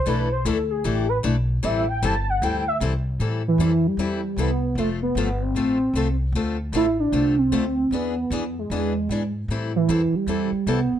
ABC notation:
X:1
M:4/4
L:1/8
Q:"Swing" 1/4=152
K:Am
V:1 name="Soft synth lead"
B c A ^G =G B z2 | e g a ^f g e z2 | z E,2 G,3 B,2 | A, B,2 C C3 z |
z2 E D2 C3 | B,3 ^G,4 z | z E,2 G,3 B,2 |]
V:2 name="Steel-string acoustic guitar"
[E,A,DEA] z [E,A,DEA] z [E,A,DEA] z [E,A,DEA] z | [E,G,CEA] z [E,G,CEA] z [E,G,CEA] z [E,G,CEA] z | [E,G,CEA] z [E,G,CEA] z [E,G,CEA] z [E,G,CEA] z | [F,A,CFA] z [F,A,CFA] z [F,A,CFA] z [F,A,CFA] z |
[D,A,CFA] z [D,A,CFA] z [D,A,CFA] z [D,A,CFA] z | [E,B,D^G] z [E,B,DG] z [E,B,DG] z [E,B,DG] z | [E,G,CEA] z [E,G,CEA] z [E,G,CEA] z [E,G,CEA] z |]
V:3 name="Upright bass" clef=bass
B,,,2 D,,2 A,,,2 B,,,2 | A,,,2 G,,,2 D,,2 C,,2 | A,,2 F,,2 E,,2 C,,2 | F,,,2 G,,,2 A,,,2 C,,2 |
D,,2 A,,,2 C,,2 D,,2 | E,,2 F,,2 E,,2 ^G,,2 | A,,2 F,, z E,, z C,, z |]